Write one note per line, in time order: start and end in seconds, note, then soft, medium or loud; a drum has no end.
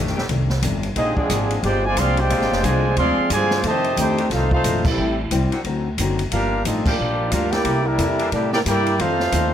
0.00 0.17 F2 medium
0.00 0.13 D#3 loud
0.00 0.18 D#3 medium
0.00 0.13 A3 loud
0.00 0.18 A3 medium
0.00 0.13 D4 loud
0.00 0.18 D4 medium
0.00 0.13 G4 loud
0.07 0.18 F1 medium
0.07 snare soft
0.15 0.28 D#1 medium
0.15 0.25 D#3 loud
0.15 0.24 A3 medium
0.15 0.25 D4 medium
0.15 0.24 G4 loud
0.15 snare soft
0.29 0.62 C2 medium
0.29 0.51 F2 medium
0.29 0.52 D#3 medium
0.29 0.52 A3 medium
0.29 0.52 D4 medium
0.29 kick soft
0.29 ride medium
0.50 snare medium
0.62 0.95 G1 loud
0.62 0.85 F2 medium
0.62 0.85 D#3 medium
0.62 0.85 A3 medium
0.62 0.85 D4 medium
0.62 kick soft
0.62 hi-hat pedal medium
0.62 ride medium
0.83 ride medium
0.95 1.15 A#1 medium
0.95 1.18 A#2 soft
0.95 1.89 D3 loud
0.95 1.88 G#3 loud
0.95 1.19 G#3 medium
0.95 1.89 C4 loud
0.95 1.16 C4 medium
0.95 1.19 D4 medium
0.95 1.16 D#4 medium
0.95 1.16 F4 medium
0.95 1.19 G4 medium
0.95 1.89 G#4 loud
0.95 1.16 G#4 medium
0.95 1.16 D#5 medium
0.95 kick soft
0.95 ride medium
1.17 1.60 F3 medium
1.17 1.60 G#3 medium
1.17 1.61 C4 medium
1.17 1.60 D4 medium
1.17 1.61 F4 medium
1.17 1.61 G#4 medium
1.17 1.60 D5 medium
1.17 muted upright bass stroke soft
1.17 kick medium
1.29 1.62 G#1 loud
1.29 1.52 A#2 medium
1.29 1.52 G#3 medium
1.29 1.53 D4 medium
1.29 1.53 G4 medium
1.29 kick soft
1.29 hi-hat pedal medium
1.29 ride medium
1.50 ride medium
1.63 1.95 G1 loud
1.63 1.86 A#2 soft
1.63 1.83 G#3 medium
1.63 1.86 G#3 medium
1.63 1.83 D4 medium
1.63 1.86 D4 medium
1.63 1.84 F4 medium
1.63 1.84 G4 medium
1.63 1.87 G4 medium
1.63 1.84 C5 medium
1.63 1.84 D5 medium
1.63 1.84 G5 loud
1.63 kick soft
1.63 ride medium
1.85 1.98 D3 medium
1.85 1.98 F3 medium
1.85 1.98 G#3 medium
1.85 1.98 F4 loud
1.85 1.98 C5 medium
1.85 1.98 D5 medium
1.85 1.98 G#5 loud
1.96 2.29 C2 loud
1.96 2.19 A#2 medium
1.96 2.19 F3 medium
1.96 2.19 G#3 medium
1.96 2.18 C4 medium
1.96 2.20 D4 medium
1.96 2.20 G4 medium
1.96 2.19 G#4 medium
1.96 2.18 D5 loud
1.96 2.19 F5 loud
1.96 2.19 C6 loud
1.96 kick soft
1.96 hi-hat pedal medium
1.96 ride medium
2.17 2.65 G#3 loud
2.17 2.64 D4 loud
2.17 2.64 F4 medium
2.17 2.65 G4 medium
2.17 2.64 C5 medium
2.17 2.63 D5 medium
2.17 2.65 G5 loud
2.17 ride medium
2.29 2.41 A#1 medium
2.29 2.52 A#2 medium
2.29 3.22 D3 loud
2.29 3.22 G#3 loud
2.29 2.52 G#3 medium
2.29 3.23 C4 loud
2.29 2.53 D4 medium
2.29 3.23 F4 loud
2.29 2.53 G4 medium
2.29 kick soft
2.29 ride medium
2.41 2.51 G#1 medium
2.41 snare soft
2.52 2.63 F1 medium
2.52 snare medium
2.63 2.96 C2 loud
2.63 2.86 A#2 medium
2.63 2.99 D3 medium
2.63 2.97 F3 medium
2.63 2.86 G#3 medium
2.63 2.97 G#3 medium
2.63 2.86 D4 medium
2.63 2.98 F4 medium
2.63 2.87 G4 medium
2.63 2.98 C5 medium
2.63 2.98 D5 medium
2.63 2.98 G#5 loud
2.63 kick soft
2.63 hi-hat pedal medium
2.63 ride medium
2.96 3.16 D2 medium
2.96 3.19 A#2 medium
2.96 3.29 F3 medium
2.96 3.19 G#3 medium
2.96 3.29 G#3 loud
2.96 3.29 C4 medium
2.96 3.20 D4 soft
2.96 3.20 G4 medium
2.96 3.29 G#4 medium
2.96 3.29 D5 loud
2.96 3.29 F5 medium
2.96 3.29 C6 loud
2.96 kick soft
2.96 ride medium
3.30 3.63 G2 loud
3.30 3.52 A#2 medium
3.30 3.63 D3 medium
3.30 3.63 F3 medium
3.30 3.52 G#3 medium
3.30 3.52 D4 medium
3.30 3.52 G4 medium
3.30 3.62 G#4 medium
3.30 3.63 C5 medium
3.30 3.63 G#5 loud
3.30 kick soft
3.30 hi-hat pedal medium
3.30 ride medium
3.34 3.63 F4 medium
3.34 3.64 D5 medium
3.51 snare medium
3.63 3.86 F2 medium
3.63 3.96 F2 medium
3.63 3.96 C3 medium
3.63 3.86 D#3 medium
3.63 3.95 D#3 medium
3.63 3.86 A3 medium
3.63 3.96 A3 medium
3.63 3.86 D4 medium
3.63 kick soft
3.63 ride medium
3.67 3.97 G4 medium
3.67 3.97 C5 medium
3.67 3.97 D#5 medium
3.67 3.97 A5 loud
3.84 ride soft
3.96 4.29 D2 loud
3.96 4.19 F2 medium
3.96 4.20 D#3 medium
3.96 4.20 A3 medium
3.96 4.29 C4 medium
3.96 4.20 D4 medium
3.96 4.29 D#4 medium
3.96 4.30 D#4 medium
3.96 4.29 G4 medium
3.96 4.30 A4 medium
3.96 4.30 C5 medium
3.96 4.30 G5 medium
3.96 kick soft
3.96 hi-hat pedal medium
3.96 ride medium
4.18 4.27 D#3 medium
4.18 4.27 A3 medium
4.18 4.27 D4 medium
4.18 4.27 G4 loud
4.18 ride medium
4.30 4.63 C2 medium
4.30 4.53 F2 soft
4.30 4.53 D#3 medium
4.30 4.53 A3 medium
4.30 4.51 A3 medium
4.30 4.52 C4 medium
4.30 4.54 D4 medium
4.30 4.52 F4 medium
4.30 kick soft
4.30 snare soft
4.30 ride medium
4.34 4.52 D#4 medium
4.34 4.52 A4 medium
4.34 4.52 C5 medium
4.34 4.52 F5 medium
4.51 4.83 A3 medium
4.51 4.84 C4 medium
4.51 4.84 D#4 medium
4.51 4.84 F4 medium
4.51 4.84 A4 loud
4.51 4.84 C5 medium
4.51 4.84 F5 loud
4.51 kick medium
4.64 4.97 A#1 loud
4.64 4.86 F2 medium
4.64 4.87 D#3 medium
4.64 4.87 A3 medium
4.64 4.87 D4 medium
4.64 kick soft
4.64 hi-hat pedal medium
4.64 ride medium
4.85 5.19 G3 medium
4.85 5.19 C4 medium
4.85 5.19 E4 medium
4.85 5.19 G4 medium
4.85 5.19 A4 medium
4.85 5.20 E5 medium
4.85 kick loud
4.85 crash medium
4.97 5.30 A1 medium
4.97 5.20 A2 medium
4.97 5.20 G3 medium
4.97 5.21 C4 medium
4.97 5.21 E4 medium
5.31 5.50 C2 medium
5.31 5.53 A2 medium
5.31 5.54 G3 medium
5.31 5.54 C4 medium
5.31 5.54 E4 medium
5.31 kick soft
5.31 hi-hat pedal medium
5.31 ride medium
5.51 5.61 D#3 medium
5.51 5.61 C4 medium
5.51 5.60 D4 medium
5.51 5.60 F#4 medium
5.51 muted upright bass stroke soft
5.51 ride medium
5.64 5.97 D2 medium
5.64 5.87 D3 medium
5.64 5.88 F#3 medium
5.64 5.88 C4 medium
5.64 5.88 D#4 medium
5.64 kick soft
5.64 ride medium
5.98 6.31 F#1 medium
5.98 6.21 D3 medium
5.98 6.21 F#3 medium
5.98 6.21 C4 medium
5.98 6.21 D#4 medium
5.98 kick soft
5.98 hi-hat pedal medium
5.98 ride medium
6.19 ride medium
6.31 6.64 G1 medium
6.31 6.54 G2 medium
6.31 6.55 F3 medium
6.31 6.63 A#3 medium
6.31 6.55 A#3 medium
6.31 6.64 D4 medium
6.31 6.55 D4 medium
6.31 6.64 F4 medium
6.31 6.64 G4 medium
6.31 6.64 A#4 medium
6.31 6.64 F5 medium
6.31 kick soft
6.31 ride medium
6.65 6.98 A1 loud
6.65 6.87 G2 medium
6.65 6.87 F3 medium
6.65 6.88 A#3 medium
6.65 6.85 C4 medium
6.65 6.88 D4 medium
6.65 6.85 D#4 medium
6.65 6.85 F4 medium
6.65 6.85 A4 medium
6.65 6.86 D#5 medium
6.65 kick soft
6.65 hi-hat pedal medium
6.65 ride medium
6.84 7.32 F3 medium
6.84 6.94 F3 loud
6.84 7.31 A#3 medium
6.84 6.95 A#3 medium
6.84 7.33 A#3 medium
6.84 7.30 D4 medium
6.84 6.95 D4 medium
6.84 7.33 F4 medium
6.84 6.95 G4 loud
6.84 7.32 G4 medium
6.84 7.33 D5 medium
6.84 kick loud
6.84 crash medium
6.98 7.31 A#1 medium
6.98 7.21 G2 soft
6.98 7.21 F3 soft
6.98 7.21 A#3 medium
6.98 7.22 D4 medium
7.31 7.64 D2 medium
7.31 7.54 G2 medium
7.31 7.55 F3 medium
7.31 7.51 A#3 medium
7.31 7.55 A#3 medium
7.31 7.52 D4 medium
7.31 7.53 D4 medium
7.31 7.55 D4 medium
7.31 7.53 F4 medium
7.31 7.54 G4 medium
7.31 7.51 A#4 medium
7.31 7.53 F5 medium
7.31 kick soft
7.31 hi-hat pedal medium
7.31 ride medium
7.52 7.83 A#3 medium
7.52 7.84 E4 medium
7.52 7.86 E4 medium
7.52 7.86 G4 medium
7.52 7.86 A#4 medium
7.52 7.86 D5 medium
7.52 7.86 G5 medium
7.52 snare soft
7.52 ride medium
7.64 7.98 C2 medium
7.64 7.87 C3 soft
7.64 7.87 A#3 medium
7.64 7.88 E4 medium
7.64 7.88 A4 medium
7.64 kick soft
7.64 ride medium
7.85 8.32 G3 medium
7.85 8.31 A#3 medium
7.85 8.33 D4 medium
7.85 8.32 E4 medium
7.85 8.33 G4 medium
7.85 8.33 A#4 medium
7.85 8.34 E5 loud
7.98 8.31 E2 loud
7.98 8.21 C3 medium
7.98 8.21 A#3 medium
7.98 8.21 E4 medium
7.98 8.21 A4 medium
7.98 kick soft
7.98 hi-hat pedal medium
7.98 ride medium
8.19 8.28 E3 loud
8.19 8.29 A#3 medium
8.19 8.28 D4 medium
8.19 8.28 A4 loud
8.19 ride medium
8.32 8.65 A2 medium
8.32 8.54 C3 medium
8.32 8.52 G3 medium
8.32 8.52 A#3 medium
8.32 8.55 A#3 medium
8.32 8.53 A#3 medium
8.32 8.52 D4 medium
8.32 8.55 E4 medium
8.32 8.52 E4 medium
8.32 8.53 G4 medium
8.32 8.55 A4 medium
8.32 8.52 D5 medium
8.32 kick soft
8.32 ride medium
8.53 8.59 A#3 medium
8.53 8.59 E4 medium
8.53 8.60 E4 medium
8.53 8.59 G4 medium
8.53 8.60 A#4 medium
8.53 8.60 D5 medium
8.53 8.60 G5 loud
8.53 snare medium
8.65 8.98 G2 loud
8.65 8.88 C3 medium
8.65 8.88 A#3 medium
8.65 8.97 A#3 medium
8.65 8.97 E4 medium
8.65 8.88 E4 medium
8.65 8.99 E4 medium
8.65 8.97 G4 medium
8.65 8.88 A4 medium
8.65 8.98 A#4 medium
8.65 8.99 D5 medium
8.65 8.98 G5 loud
8.65 kick soft
8.65 hi-hat pedal medium
8.65 ride medium
8.86 ride medium
8.98 9.21 F2 soft
8.98 9.32 F2 medium
8.98 9.21 D#3 medium
8.98 9.22 A3 medium
8.98 9.54 A3 medium
8.98 9.54 C4 medium
8.98 9.22 D4 medium
8.98 9.54 D#4 medium
8.98 9.54 F4 medium
8.98 9.54 A4 loud
8.98 9.54 C5 loud
8.98 9.54 F5 loud
8.98 kick soft
8.98 ride medium
9.20 snare soft
9.32 9.54 D#2 loud
9.32 9.54 F2 medium
9.32 9.54 D#3 medium
9.32 9.54 A3 medium
9.32 9.54 D4 medium
9.32 kick soft
9.32 hi-hat pedal medium
9.32 ride medium